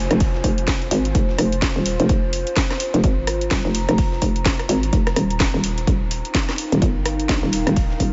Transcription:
0.00 7.52 F4 medium
0.00 7.67 C5 medium
0.00 3.17 G#5 loud
0.00 downlifter medium
0.11 0.42 F1 loud
0.11 cross-stick medium
0.11 closed hi-hat medium
0.20 kick loud
0.20 closed hi-hat medium
0.20 open hi-hat medium
0.34 snare soft
0.44 0.90 F1 loud
0.44 kick medium
0.44 closed hi-hat medium
0.44 open hi-hat loud
0.58 closed hi-hat medium
0.68 kick loud
0.68 snare loud
0.68 closed hi-hat medium
0.82 closed hi-hat soft
0.91 1.13 G#1 loud
0.91 closed hi-hat medium
0.91 open hi-hat loud
1.05 closed hi-hat medium
1.15 1.37 F1 loud
1.15 kick loud
1.15 closed hi-hat medium
1.29 snare soft
1.38 1.74 F1 loud
1.38 cross-stick medium
1.38 closed hi-hat medium
1.38 open hi-hat loud
1.52 closed hi-hat medium
1.62 kick loud
1.62 snare loud
1.62 closed hi-hat medium
1.76 1.97 D#1 loud
1.76 snare soft
1.86 snare medium
1.86 closed hi-hat medium
1.86 open hi-hat loud
2.00 2.08 F1 loud
2.00 closed hi-hat medium
2.09 2.45 F1 loud
2.09 kick loud
2.09 closed hi-hat medium
2.33 closed hi-hat medium
2.33 open hi-hat loud
2.47 closed hi-hat medium
2.56 kick loud
2.56 snare loud
2.56 closed hi-hat medium
2.70 cross-stick medium
2.70 snare soft
2.70 closed hi-hat soft
2.80 closed hi-hat medium
2.80 open hi-hat loud
2.94 3.02 F1 loud
2.94 closed hi-hat medium
3.01 3.50 G#1 medium
3.01 7.61 A#5 medium
3.01 kick loud
3.01 closed hi-hat medium
3.27 cross-stick medium
3.27 closed hi-hat medium
3.27 open hi-hat loud
3.41 closed hi-hat medium
3.51 3.63 D#1 loud
3.51 kick loud
3.51 snare loud
3.51 closed hi-hat medium
3.65 3.86 F1 medium
3.65 snare soft
3.75 snare soft
3.75 closed hi-hat medium
3.75 open hi-hat loud
3.89 4.20 F1 loud
3.89 cross-stick medium
3.89 closed hi-hat medium
3.98 kick loud
3.98 closed hi-hat medium
3.98 open hi-hat medium
4.12 snare soft
4.22 4.68 F1 loud
4.22 kick medium
4.22 closed hi-hat medium
4.22 open hi-hat loud
4.36 closed hi-hat soft
4.45 kick loud
4.45 snare loud
4.45 closed hi-hat medium
4.59 cross-stick medium
4.59 closed hi-hat soft
4.69 4.91 G#1 loud
4.69 closed hi-hat medium
4.69 open hi-hat loud
4.83 closed hi-hat medium
4.93 5.15 F1 loud
4.93 kick loud
4.93 closed hi-hat medium
5.07 cross-stick medium
5.07 snare soft
5.07 closed hi-hat soft
5.16 5.52 D#1 loud
5.16 cross-stick medium
5.16 closed hi-hat medium
5.16 open hi-hat loud
5.31 closed hi-hat medium
5.40 kick loud
5.40 snare loud
5.40 closed hi-hat medium
5.54 5.86 D#1 loud
5.54 snare soft
5.64 snare medium
5.64 closed hi-hat medium
5.64 open hi-hat loud
5.78 closed hi-hat soft
5.87 6.23 D#1 loud
5.87 8.13 D#4 medium
5.87 kick loud
5.87 closed hi-hat medium
6.02 8.13 A#4 medium
6.02 8.13 F5 medium
6.02 8.13 G5 medium
6.11 closed hi-hat medium
6.11 open hi-hat loud
6.25 closed hi-hat soft
6.35 kick loud
6.35 snare loud
6.35 closed hi-hat medium
6.49 cross-stick medium
6.49 snare soft
6.49 closed hi-hat soft
6.58 closed hi-hat medium
6.58 open hi-hat loud
6.72 6.80 D#1 loud
6.72 closed hi-hat medium
6.82 7.28 G1 loud
6.82 kick loud
6.82 closed hi-hat medium
7.06 cross-stick medium
7.06 closed hi-hat medium
7.06 open hi-hat loud
7.20 closed hi-hat medium
7.29 7.41 A#1 loud
7.29 kick loud
7.29 snare loud
7.29 closed hi-hat medium
7.43 7.64 D#1 loud
7.43 snare soft
7.53 snare soft
7.53 closed hi-hat medium
7.53 open hi-hat loud
7.67 7.98 D#1 loud
7.67 cross-stick medium
7.67 closed hi-hat soft
7.76 kick loud
7.76 closed hi-hat medium
7.76 open hi-hat medium
7.90 snare soft
8.00 8.13 D#1 loud
8.00 kick medium
8.00 closed hi-hat medium
8.00 open hi-hat loud

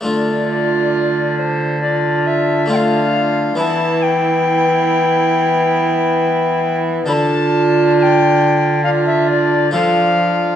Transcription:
0.01 3.53 D3 soft
0.01 2.64 A3 soft
0.01 2.64 D4 soft
0.01 2.65 F4 soft
0.06 3.54 D3 medium
0.06 1.78 D4 medium
0.06 1.78 F4 medium
0.06 1.40 D5 medium
1.39 1.81 C5 medium
1.81 2.70 D4 medium
1.81 2.69 F4 medium
1.81 2.28 D5 medium
2.27 2.70 E5 medium
2.66 3.53 A3 soft
2.66 3.54 D4 soft
2.66 3.54 F4 soft
2.70 3.57 D4 medium
2.70 3.59 F4 medium
2.70 2.76 G5 medium
2.75 3.57 F5 loud
3.55 7.05 E3 soft
3.55 7.05 E3 medium
3.55 7.04 B3 soft
3.55 7.04 E4 soft
3.55 7.08 E4 medium
3.55 4.04 A5 medium
3.60 7.06 B3 medium
4.02 6.81 G5 medium
7.06 9.69 D3 soft
7.06 9.75 D3 medium
7.06 9.68 D4 soft
7.06 8.70 D4 medium
7.06 8.80 F4 medium
7.06 9.68 A4 soft
7.06 7.14 B5 medium
7.13 7.92 A5 medium
7.97 8.03 A5 medium
8.02 8.83 G5 medium
8.83 9.72 D4 medium
8.83 9.71 F4 medium
8.83 8.89 F5 medium
9.06 9.29 E5 medium
9.28 9.72 D5 medium
9.71 10.56 F3 medium
9.71 10.56 D4 soft
9.71 10.56 D4 medium
9.71 10.56 F4 medium
9.71 10.56 A4 soft
9.71 10.56 F5 loud

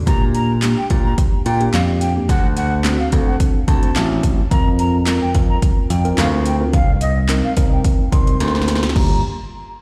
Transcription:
0.07 0.74 A#2 medium
0.07 0.53 A#3 medium
0.07 0.54 D4 medium
0.07 0.54 G4 medium
0.07 0.25 A#5 medium
0.07 kick loud
0.07 closed hi-hat medium
0.35 0.53 A#5 medium
0.35 closed hi-hat medium
0.62 1.43 A#3 medium
0.62 1.43 D4 medium
0.62 1.43 G4 medium
0.62 snare medium
0.62 clap loud
0.62 closed hi-hat loud
0.77 0.86 G5 medium
0.90 1.13 A#2 medium
0.90 kick medium
0.90 closed hi-hat medium
1.05 1.13 A#5 medium
1.18 kick medium
1.18 closed hi-hat medium
1.46 1.68 A#2 medium
1.46 1.64 G5 medium
1.46 closed hi-hat medium
1.60 2.06 A#3 medium
1.60 2.06 D4 medium
1.60 2.06 G4 loud
1.60 closed hi-hat soft
1.74 2.18 F2 medium
1.74 1.83 F5 medium
1.74 snare medium
1.74 clap loud
1.74 closed hi-hat medium
2.01 2.11 G5 medium
2.01 closed hi-hat medium
2.16 2.29 A#3 medium
2.16 2.29 D4 medium
2.16 2.29 G4 medium
2.29 2.96 D2 medium
2.29 2.47 F#5 loud
2.29 kick loud
2.29 closed hi-hat medium
2.57 2.75 F#5 medium
2.57 closed hi-hat medium
2.84 3.08 C4 medium
2.84 3.08 D4 medium
2.84 3.08 F#4 medium
2.84 snare medium
2.84 clap loud
2.84 closed hi-hat loud
2.99 3.08 F5 medium
3.12 3.35 D2 medium
3.12 3.59 C4 medium
3.12 3.59 D4 medium
3.12 3.59 A4 medium
3.12 kick medium
3.12 closed hi-hat medium
3.27 3.36 F#5 medium
3.40 kick medium
3.40 closed hi-hat medium
3.68 3.90 D2 medium
3.68 4.38 C4 medium
3.68 4.38 D4 medium
3.68 4.38 F#4 medium
3.68 4.08 A5 medium
3.68 kick loud
3.68 closed hi-hat medium
3.83 closed hi-hat medium
3.96 4.40 A1 medium
3.96 snare medium
3.96 clap loud
3.96 closed hi-hat medium
4.23 kick medium
4.23 closed hi-hat medium
4.51 5.18 F2 medium
4.51 4.98 C4 medium
4.51 4.98 F4 medium
4.51 4.98 A#4 medium
4.51 4.69 A#5 loud
4.51 kick loud
4.51 closed hi-hat medium
4.79 4.97 A#5 medium
4.79 closed hi-hat medium
5.06 5.88 C4 medium
5.06 5.88 F4 medium
5.06 5.88 A#4 medium
5.06 snare medium
5.06 clap loud
5.06 closed hi-hat medium
5.22 5.30 G5 medium
5.35 5.57 F2 loud
5.35 kick loud
5.35 closed hi-hat medium
5.49 5.58 A#5 medium
5.62 kick medium
5.62 closed hi-hat medium
5.90 6.12 F2 medium
5.90 6.08 G5 medium
5.90 closed hi-hat medium
6.05 6.50 C4 medium
6.05 6.50 F4 medium
6.05 6.51 A#4 medium
6.05 closed hi-hat soft
6.18 6.63 D2 medium
6.18 6.28 F5 medium
6.18 snare medium
6.18 clap loud
6.18 closed hi-hat medium
6.46 6.55 G5 medium
6.46 closed hi-hat medium
6.60 6.73 C4 medium
6.60 6.74 F4 medium
6.60 6.74 A#4 medium
6.73 7.41 C2 medium
6.73 6.92 F5 loud
6.73 kick loud
6.73 closed hi-hat medium
7.01 7.19 D#5 medium
7.01 closed hi-hat medium
7.28 7.52 C4 medium
7.28 7.52 D#4 medium
7.28 7.53 A#4 loud
7.28 snare medium
7.28 clap loud
7.28 closed hi-hat medium
7.44 7.52 F5 medium
7.57 7.79 C2 loud
7.57 8.03 C4 medium
7.57 8.04 D#4 medium
7.57 8.04 A#4 medium
7.57 kick medium
7.57 closed hi-hat medium
7.72 7.80 G5 medium
7.84 kick loud
7.84 closed hi-hat medium
8.12 8.35 C2 medium
8.12 8.82 C4 medium
8.12 8.82 D#4 medium
8.12 8.82 A#4 medium
8.12 8.52 C6 medium
8.12 kick loud
8.12 closed hi-hat medium
8.27 closed hi-hat medium
8.40 8.85 D2 medium
8.40 snare medium
8.40 closed hi-hat loud
8.48 snare medium
8.55 snare medium
8.62 snare medium
8.68 snare medium
8.68 closed hi-hat medium
8.75 snare medium
8.83 snare loud
8.83 closed hi-hat medium
8.89 snare medium
8.96 9.22 G1 medium
8.96 9.22 A#3 medium
8.96 9.22 F4 medium
8.96 9.22 G4 medium
8.96 9.22 A#5 medium
8.96 kick loud
8.96 crash medium

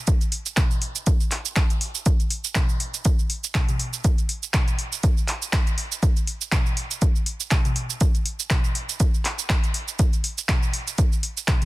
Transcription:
0.07 kick loud
0.07 closed hi-hat medium
0.07 shaker medium
0.21 closed hi-hat soft
0.21 shaker soft
0.32 open hi-hat medium
0.46 closed hi-hat soft
0.46 shaker medium
0.57 finger snap loud
0.57 kick loud
0.57 clap loud
0.57 closed hi-hat medium
0.57 mid tom medium
0.57 shaker medium
0.71 shaker soft
0.82 open hi-hat medium
0.96 closed hi-hat soft
0.96 shaker medium
1.06 kick loud
1.06 closed hi-hat medium
1.06 shaker medium
1.20 shaker soft
1.31 clap soft
1.31 open hi-hat medium
1.45 closed hi-hat soft
1.45 shaker medium
1.56 finger snap loud
1.56 kick loud
1.56 clap loud
1.56 closed hi-hat medium
1.56 shaker medium
1.70 closed hi-hat soft
1.70 shaker soft
1.81 open hi-hat loud
1.95 shaker medium
2.06 kick loud
2.06 closed hi-hat medium
2.06 shaker medium
2.20 closed hi-hat soft
2.20 shaker soft
2.30 open hi-hat medium
2.44 closed hi-hat soft
2.44 shaker medium
2.55 finger snap loud
2.55 kick loud
2.55 clap loud
2.55 closed hi-hat medium
2.55 mid tom medium
2.55 shaker medium
2.69 shaker soft
2.80 open hi-hat medium
2.94 closed hi-hat soft
2.94 shaker medium
3.05 kick loud
3.05 closed hi-hat medium
3.05 shaker medium
3.19 shaker soft
3.30 open hi-hat medium
3.44 closed hi-hat soft
3.44 shaker medium
3.55 finger snap loud
3.55 kick loud
3.55 clap loud
3.55 closed hi-hat medium
3.55 mid tom medium
3.55 shaker medium
3.69 closed hi-hat soft
3.69 mid tom medium
3.69 shaker soft
3.79 open hi-hat medium
3.93 shaker medium
4.04 kick loud
4.04 closed hi-hat medium
4.04 shaker medium
4.18 closed hi-hat soft
4.18 shaker soft
4.29 open hi-hat medium
4.43 closed hi-hat soft
4.43 shaker medium
4.54 finger snap loud
4.54 kick loud
4.54 clap loud
4.54 closed hi-hat medium
4.54 mid tom medium
4.54 shaker medium
4.68 closed hi-hat soft
4.68 shaker soft
4.79 open hi-hat medium
4.93 closed hi-hat soft
4.93 shaker medium
5.03 kick loud
5.03 closed hi-hat medium
5.03 shaker medium
5.18 shaker soft
5.28 clap medium
5.28 open hi-hat medium
5.42 closed hi-hat soft
5.42 shaker medium
5.53 finger snap loud
5.53 kick loud
5.53 clap loud
5.53 closed hi-hat medium
5.53 shaker medium
5.67 closed hi-hat soft
5.67 shaker soft
5.78 open hi-hat medium
5.92 closed hi-hat soft
5.92 shaker medium
6.03 kick loud
6.03 closed hi-hat medium
6.03 shaker medium
6.17 closed hi-hat soft
6.17 shaker soft
6.27 open hi-hat medium
6.41 closed hi-hat soft
6.41 shaker medium
6.52 finger snap loud
6.52 kick loud
6.52 clap loud
6.52 closed hi-hat medium
6.52 mid tom medium
6.52 shaker medium
6.66 shaker soft
6.77 open hi-hat medium
6.91 closed hi-hat soft
6.91 shaker medium
7.02 kick loud
7.02 closed hi-hat medium
7.02 shaker medium
7.16 shaker soft
7.26 open hi-hat medium
7.40 closed hi-hat soft
7.40 shaker medium
7.51 finger snap loud
7.51 kick loud
7.51 clap loud
7.51 closed hi-hat medium
7.51 mid tom medium
7.51 shaker medium
7.65 closed hi-hat soft
7.65 mid tom medium
7.65 shaker soft
7.76 open hi-hat medium
7.90 shaker medium
8.01 kick loud
8.01 closed hi-hat medium
8.01 shaker medium
8.15 closed hi-hat soft
8.15 shaker soft
8.26 open hi-hat medium
8.40 closed hi-hat soft
8.40 shaker medium
8.50 finger snap loud
8.50 kick loud
8.50 clap loud
8.50 closed hi-hat medium
8.50 mid tom medium
8.50 shaker medium
8.64 shaker soft
8.75 open hi-hat medium
8.89 closed hi-hat soft
8.89 shaker medium
9.00 kick loud
9.00 closed hi-hat medium
9.00 shaker medium
9.14 shaker soft
9.25 clap medium
9.25 open hi-hat medium
9.39 closed hi-hat soft
9.39 shaker medium
9.50 finger snap loud
9.50 kick loud
9.50 clap loud
9.50 closed hi-hat medium
9.50 shaker medium
9.64 closed hi-hat soft
9.64 shaker soft
9.74 open hi-hat medium
9.88 shaker medium
9.99 kick loud
9.99 closed hi-hat medium
9.99 shaker medium
10.13 closed hi-hat soft
10.13 shaker soft
10.24 open hi-hat medium
10.38 closed hi-hat soft
10.38 shaker medium
10.49 finger snap loud
10.49 kick loud
10.49 clap loud
10.49 closed hi-hat medium
10.49 mid tom medium
10.49 shaker medium
10.63 shaker soft
10.74 open hi-hat loud
10.88 closed hi-hat soft
10.88 shaker medium
10.98 kick loud
10.98 closed hi-hat medium
10.98 shaker medium
11.12 shaker soft
11.23 open hi-hat medium
11.37 closed hi-hat soft
11.37 shaker medium
11.48 finger snap loud
11.48 kick loud
11.48 clap loud
11.48 closed hi-hat medium
11.48 mid tom medium
11.48 shaker medium
11.62 closed hi-hat soft
11.62 mid tom medium
11.62 shaker soft

